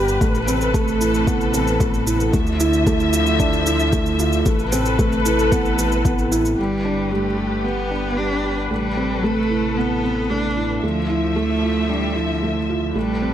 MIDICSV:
0, 0, Header, 1, 6, 480
1, 0, Start_track
1, 0, Key_signature, 0, "minor"
1, 0, Tempo, 530973
1, 192, Time_signature, 4, 2, 24, 8
1, 12057, End_track
2, 0, Start_track
2, 0, Title_t, "String section"
2, 0, Program_c, 0, 48
2, 0, Note_on_c, 0, 50, 67
2, 0, Note_on_c, 0, 67, 74
2, 0, Note_on_c, 0, 71, 63
2, 170, Note_off_c, 0, 67, 0
2, 172, Note_off_c, 0, 50, 0
2, 194, Note_on_c, 0, 48, 70
2, 194, Note_on_c, 0, 69, 79
2, 2075, Note_off_c, 0, 71, 0
2, 2094, Note_off_c, 0, 48, 0
2, 2094, Note_off_c, 0, 69, 0
2, 2116, Note_on_c, 0, 53, 65
2, 2116, Note_on_c, 0, 76, 78
2, 2117, Note_on_c, 0, 50, 74
2, 4015, Note_off_c, 0, 50, 0
2, 4015, Note_off_c, 0, 53, 0
2, 4015, Note_off_c, 0, 76, 0
2, 4035, Note_on_c, 0, 69, 81
2, 4037, Note_on_c, 0, 71, 71
2, 4038, Note_on_c, 0, 48, 76
2, 5934, Note_off_c, 0, 69, 0
2, 5935, Note_off_c, 0, 71, 0
2, 5936, Note_off_c, 0, 48, 0
2, 5947, Note_on_c, 0, 71, 51
2, 5948, Note_on_c, 0, 67, 60
2, 5949, Note_on_c, 0, 50, 54
2, 7851, Note_off_c, 0, 50, 0
2, 7851, Note_off_c, 0, 67, 0
2, 7875, Note_on_c, 0, 69, 68
2, 7876, Note_on_c, 0, 48, 57
2, 9753, Note_off_c, 0, 71, 0
2, 9774, Note_off_c, 0, 69, 0
2, 9775, Note_off_c, 0, 48, 0
2, 9791, Note_on_c, 0, 50, 60
2, 9791, Note_on_c, 0, 76, 63
2, 9792, Note_on_c, 0, 53, 56
2, 11692, Note_off_c, 0, 50, 0
2, 11692, Note_off_c, 0, 76, 0
2, 11693, Note_off_c, 0, 53, 0
2, 11703, Note_on_c, 0, 71, 56
2, 11708, Note_on_c, 0, 48, 60
2, 11709, Note_on_c, 0, 69, 69
2, 12057, Note_off_c, 0, 48, 0
2, 12057, Note_off_c, 0, 69, 0
2, 12057, Note_off_c, 0, 71, 0
2, 12057, End_track
3, 0, Start_track
3, 0, Title_t, "Felt piano"
3, 0, Program_c, 1, 0
3, 0, Control_c, 1, 64, 127
3, 0, Note_on_c, 1, 55, 73
3, 0, Note_on_c, 1, 59, 78
3, 0, Note_on_c, 1, 62, 74
3, 0, Note_on_c, 1, 67, 66
3, 181, Note_off_c, 1, 67, 0
3, 191, Note_on_c, 1, 57, 78
3, 204, Control_c, 1, 64, 0
3, 205, Note_off_c, 1, 62, 0
3, 209, Note_off_c, 1, 55, 0
3, 211, Note_off_c, 1, 59, 0
3, 328, Note_off_c, 1, 57, 0
3, 378, Control_c, 1, 64, 127
3, 433, Note_on_c, 1, 60, 87
3, 660, Note_off_c, 1, 60, 0
3, 671, Note_on_c, 1, 57, 101
3, 809, Note_off_c, 1, 57, 0
3, 911, Note_on_c, 1, 64, 67
3, 1140, Note_off_c, 1, 64, 0
3, 1152, Note_on_c, 1, 59, 75
3, 1380, Note_off_c, 1, 59, 0
3, 1390, Note_on_c, 1, 60, 72
3, 1528, Note_off_c, 1, 60, 0
3, 1631, Note_on_c, 1, 57, 73
3, 1768, Note_off_c, 1, 57, 0
3, 1871, Note_on_c, 1, 64, 73
3, 2100, Note_off_c, 1, 64, 0
3, 2113, Note_on_c, 1, 57, 77
3, 2124, Control_c, 1, 64, 0
3, 2249, Note_off_c, 1, 57, 0
3, 2261, Control_c, 1, 64, 127
3, 2354, Note_on_c, 1, 64, 98
3, 2581, Note_off_c, 1, 64, 0
3, 2594, Note_on_c, 1, 57, 100
3, 2730, Note_off_c, 1, 57, 0
3, 2831, Note_on_c, 1, 65, 70
3, 3060, Note_off_c, 1, 65, 0
3, 3069, Note_on_c, 1, 62, 81
3, 3299, Note_off_c, 1, 62, 0
3, 3311, Note_on_c, 1, 64, 76
3, 3448, Note_off_c, 1, 64, 0
3, 3551, Note_on_c, 1, 57, 75
3, 3689, Note_off_c, 1, 57, 0
3, 3793, Note_on_c, 1, 65, 73
3, 4021, Note_off_c, 1, 65, 0
3, 4031, Note_on_c, 1, 57, 81
3, 4044, Control_c, 1, 64, 0
3, 4168, Note_off_c, 1, 57, 0
3, 4199, Control_c, 1, 64, 127
3, 4271, Note_on_c, 1, 60, 94
3, 4499, Note_off_c, 1, 60, 0
3, 4510, Note_on_c, 1, 57, 97
3, 4648, Note_off_c, 1, 57, 0
3, 4751, Note_on_c, 1, 64, 71
3, 4980, Note_off_c, 1, 64, 0
3, 4991, Note_on_c, 1, 59, 77
3, 5219, Note_off_c, 1, 59, 0
3, 5233, Note_on_c, 1, 64, 75
3, 5461, Note_off_c, 1, 64, 0
3, 5472, Note_on_c, 1, 59, 74
3, 5700, Note_off_c, 1, 59, 0
3, 5711, Note_on_c, 1, 64, 93
3, 5939, Note_off_c, 1, 64, 0
3, 5952, Note_on_c, 1, 55, 62
3, 5964, Control_c, 1, 64, 0
3, 6089, Note_off_c, 1, 55, 0
3, 6111, Control_c, 1, 64, 127
3, 6192, Note_on_c, 1, 62, 69
3, 6420, Note_off_c, 1, 62, 0
3, 6428, Note_on_c, 1, 55, 78
3, 6567, Note_off_c, 1, 55, 0
3, 6668, Note_on_c, 1, 67, 55
3, 6898, Note_off_c, 1, 67, 0
3, 6909, Note_on_c, 1, 59, 62
3, 7138, Note_off_c, 1, 59, 0
3, 7151, Note_on_c, 1, 62, 56
3, 7288, Note_off_c, 1, 62, 0
3, 7390, Note_on_c, 1, 55, 62
3, 7528, Note_off_c, 1, 55, 0
3, 7629, Note_on_c, 1, 67, 53
3, 7858, Note_off_c, 1, 67, 0
3, 7871, Note_on_c, 1, 57, 59
3, 7885, Control_c, 1, 64, 0
3, 8008, Note_off_c, 1, 57, 0
3, 8028, Control_c, 1, 64, 127
3, 8110, Note_on_c, 1, 60, 73
3, 8339, Note_off_c, 1, 60, 0
3, 8351, Note_on_c, 1, 57, 78
3, 8488, Note_off_c, 1, 57, 0
3, 8591, Note_on_c, 1, 64, 55
3, 8820, Note_off_c, 1, 64, 0
3, 8830, Note_on_c, 1, 59, 60
3, 9059, Note_off_c, 1, 59, 0
3, 9071, Note_on_c, 1, 60, 58
3, 9208, Note_off_c, 1, 60, 0
3, 9313, Note_on_c, 1, 57, 59
3, 9449, Note_off_c, 1, 57, 0
3, 9553, Note_on_c, 1, 64, 55
3, 9781, Note_off_c, 1, 64, 0
3, 9794, Note_on_c, 1, 57, 62
3, 9805, Control_c, 1, 64, 0
3, 9930, Note_off_c, 1, 57, 0
3, 9960, Control_c, 1, 64, 127
3, 10031, Note_on_c, 1, 64, 75
3, 10260, Note_off_c, 1, 64, 0
3, 10270, Note_on_c, 1, 57, 76
3, 10408, Note_off_c, 1, 57, 0
3, 10513, Note_on_c, 1, 65, 54
3, 10741, Note_off_c, 1, 65, 0
3, 10750, Note_on_c, 1, 62, 66
3, 10979, Note_off_c, 1, 62, 0
3, 10989, Note_on_c, 1, 64, 61
3, 11127, Note_off_c, 1, 64, 0
3, 11233, Note_on_c, 1, 57, 59
3, 11369, Note_off_c, 1, 57, 0
3, 11475, Note_on_c, 1, 65, 61
3, 11701, Note_off_c, 1, 65, 0
3, 11710, Note_on_c, 1, 57, 64
3, 11725, Control_c, 1, 64, 0
3, 11848, Note_off_c, 1, 57, 0
3, 11857, Control_c, 1, 64, 127
3, 11953, Note_on_c, 1, 60, 73
3, 12057, Note_off_c, 1, 60, 0
3, 12057, End_track
4, 0, Start_track
4, 0, Title_t, "Cello"
4, 0, Program_c, 2, 42
4, 5946, Note_on_c, 2, 55, 72
4, 6428, Note_on_c, 2, 57, 75
4, 6442, Note_off_c, 2, 55, 0
4, 6910, Note_on_c, 2, 59, 81
4, 6923, Note_off_c, 2, 57, 0
4, 7385, Note_on_c, 2, 62, 82
4, 7399, Note_off_c, 2, 59, 0
4, 7748, Note_off_c, 2, 62, 0
4, 7869, Note_on_c, 2, 55, 76
4, 8347, Note_on_c, 2, 57, 82
4, 8360, Note_off_c, 2, 55, 0
4, 8826, Note_on_c, 2, 59, 85
4, 8840, Note_off_c, 2, 57, 0
4, 9305, Note_on_c, 2, 62, 77
4, 9318, Note_off_c, 2, 59, 0
4, 9668, Note_off_c, 2, 62, 0
4, 9785, Note_on_c, 2, 53, 72
4, 10263, Note_on_c, 2, 57, 75
4, 10277, Note_off_c, 2, 53, 0
4, 10750, Note_on_c, 2, 55, 75
4, 10763, Note_off_c, 2, 57, 0
4, 10988, Note_on_c, 2, 53, 64
4, 11002, Note_off_c, 2, 55, 0
4, 11470, Note_off_c, 2, 53, 0
4, 11714, Note_on_c, 2, 55, 69
4, 12057, Note_off_c, 2, 55, 0
4, 12057, End_track
5, 0, Start_track
5, 0, Title_t, "Detuned saw bass"
5, 0, Program_c, 3, 39
5, 0, Note_on_c, 3, 31, 89
5, 167, Note_off_c, 3, 31, 0
5, 191, Note_on_c, 3, 33, 87
5, 2088, Note_off_c, 3, 33, 0
5, 2109, Note_on_c, 3, 38, 85
5, 4007, Note_off_c, 3, 38, 0
5, 4032, Note_on_c, 3, 33, 89
5, 5928, Note_off_c, 3, 33, 0
5, 5952, Note_on_c, 3, 31, 76
5, 7848, Note_off_c, 3, 31, 0
5, 7869, Note_on_c, 3, 33, 75
5, 9766, Note_off_c, 3, 33, 0
5, 9790, Note_on_c, 3, 38, 79
5, 11687, Note_off_c, 3, 38, 0
5, 11708, Note_on_c, 3, 33, 76
5, 12057, Note_off_c, 3, 33, 0
5, 12057, End_track
6, 0, Start_track
6, 0, Title_t, "Drums"
6, 74, Note_on_c, 9, 82, 28
6, 165, Note_off_c, 9, 82, 0
6, 191, Note_on_c, 9, 36, 97
6, 193, Note_on_c, 9, 82, 39
6, 281, Note_off_c, 9, 36, 0
6, 284, Note_off_c, 9, 82, 0
6, 314, Note_on_c, 9, 82, 19
6, 404, Note_off_c, 9, 82, 0
6, 432, Note_on_c, 9, 82, 65
6, 523, Note_off_c, 9, 82, 0
6, 552, Note_on_c, 9, 82, 28
6, 643, Note_off_c, 9, 82, 0
6, 671, Note_on_c, 9, 36, 98
6, 673, Note_on_c, 9, 82, 39
6, 761, Note_off_c, 9, 36, 0
6, 763, Note_off_c, 9, 82, 0
6, 794, Note_on_c, 9, 82, 20
6, 884, Note_off_c, 9, 82, 0
6, 914, Note_on_c, 9, 82, 71
6, 1004, Note_off_c, 9, 82, 0
6, 1033, Note_on_c, 9, 82, 28
6, 1123, Note_off_c, 9, 82, 0
6, 1151, Note_on_c, 9, 36, 91
6, 1152, Note_on_c, 9, 82, 35
6, 1241, Note_off_c, 9, 36, 0
6, 1243, Note_off_c, 9, 82, 0
6, 1274, Note_on_c, 9, 82, 19
6, 1364, Note_off_c, 9, 82, 0
6, 1391, Note_on_c, 9, 82, 68
6, 1481, Note_off_c, 9, 82, 0
6, 1513, Note_on_c, 9, 82, 28
6, 1603, Note_off_c, 9, 82, 0
6, 1631, Note_on_c, 9, 36, 97
6, 1631, Note_on_c, 9, 82, 38
6, 1721, Note_off_c, 9, 36, 0
6, 1722, Note_off_c, 9, 82, 0
6, 1752, Note_on_c, 9, 82, 20
6, 1842, Note_off_c, 9, 82, 0
6, 1872, Note_on_c, 9, 82, 64
6, 1962, Note_off_c, 9, 82, 0
6, 1990, Note_on_c, 9, 82, 29
6, 2081, Note_off_c, 9, 82, 0
6, 2110, Note_on_c, 9, 36, 96
6, 2110, Note_on_c, 9, 82, 36
6, 2201, Note_off_c, 9, 36, 0
6, 2201, Note_off_c, 9, 82, 0
6, 2229, Note_on_c, 9, 82, 17
6, 2320, Note_off_c, 9, 82, 0
6, 2350, Note_on_c, 9, 82, 68
6, 2441, Note_off_c, 9, 82, 0
6, 2470, Note_on_c, 9, 82, 30
6, 2560, Note_off_c, 9, 82, 0
6, 2591, Note_on_c, 9, 36, 92
6, 2592, Note_on_c, 9, 82, 37
6, 2681, Note_off_c, 9, 36, 0
6, 2683, Note_off_c, 9, 82, 0
6, 2713, Note_on_c, 9, 82, 19
6, 2803, Note_off_c, 9, 82, 0
6, 2831, Note_on_c, 9, 82, 66
6, 2921, Note_off_c, 9, 82, 0
6, 2951, Note_on_c, 9, 82, 27
6, 3041, Note_off_c, 9, 82, 0
6, 3071, Note_on_c, 9, 36, 92
6, 3071, Note_on_c, 9, 82, 39
6, 3161, Note_off_c, 9, 36, 0
6, 3161, Note_off_c, 9, 82, 0
6, 3192, Note_on_c, 9, 82, 19
6, 3283, Note_off_c, 9, 82, 0
6, 3311, Note_on_c, 9, 82, 67
6, 3402, Note_off_c, 9, 82, 0
6, 3431, Note_on_c, 9, 82, 25
6, 3521, Note_off_c, 9, 82, 0
6, 3550, Note_on_c, 9, 36, 89
6, 3550, Note_on_c, 9, 82, 38
6, 3640, Note_off_c, 9, 82, 0
6, 3641, Note_off_c, 9, 36, 0
6, 3671, Note_on_c, 9, 82, 19
6, 3761, Note_off_c, 9, 82, 0
6, 3790, Note_on_c, 9, 82, 66
6, 3881, Note_off_c, 9, 82, 0
6, 3910, Note_on_c, 9, 82, 29
6, 4001, Note_off_c, 9, 82, 0
6, 4029, Note_on_c, 9, 82, 38
6, 4031, Note_on_c, 9, 36, 96
6, 4120, Note_off_c, 9, 82, 0
6, 4121, Note_off_c, 9, 36, 0
6, 4151, Note_on_c, 9, 82, 18
6, 4241, Note_off_c, 9, 82, 0
6, 4269, Note_on_c, 9, 82, 67
6, 4360, Note_off_c, 9, 82, 0
6, 4390, Note_on_c, 9, 82, 32
6, 4480, Note_off_c, 9, 82, 0
6, 4511, Note_on_c, 9, 36, 99
6, 4511, Note_on_c, 9, 82, 41
6, 4601, Note_off_c, 9, 36, 0
6, 4601, Note_off_c, 9, 82, 0
6, 4631, Note_on_c, 9, 82, 21
6, 4721, Note_off_c, 9, 82, 0
6, 4751, Note_on_c, 9, 82, 74
6, 4842, Note_off_c, 9, 82, 0
6, 4873, Note_on_c, 9, 82, 27
6, 4963, Note_off_c, 9, 82, 0
6, 4991, Note_on_c, 9, 36, 100
6, 4991, Note_on_c, 9, 82, 41
6, 5081, Note_off_c, 9, 36, 0
6, 5081, Note_off_c, 9, 82, 0
6, 5111, Note_on_c, 9, 82, 19
6, 5201, Note_off_c, 9, 82, 0
6, 5230, Note_on_c, 9, 82, 66
6, 5320, Note_off_c, 9, 82, 0
6, 5350, Note_on_c, 9, 82, 25
6, 5440, Note_off_c, 9, 82, 0
6, 5470, Note_on_c, 9, 36, 98
6, 5470, Note_on_c, 9, 82, 38
6, 5560, Note_off_c, 9, 36, 0
6, 5561, Note_off_c, 9, 82, 0
6, 5592, Note_on_c, 9, 82, 21
6, 5682, Note_off_c, 9, 82, 0
6, 5713, Note_on_c, 9, 82, 64
6, 5804, Note_off_c, 9, 82, 0
6, 5833, Note_on_c, 9, 82, 30
6, 5923, Note_off_c, 9, 82, 0
6, 12057, End_track
0, 0, End_of_file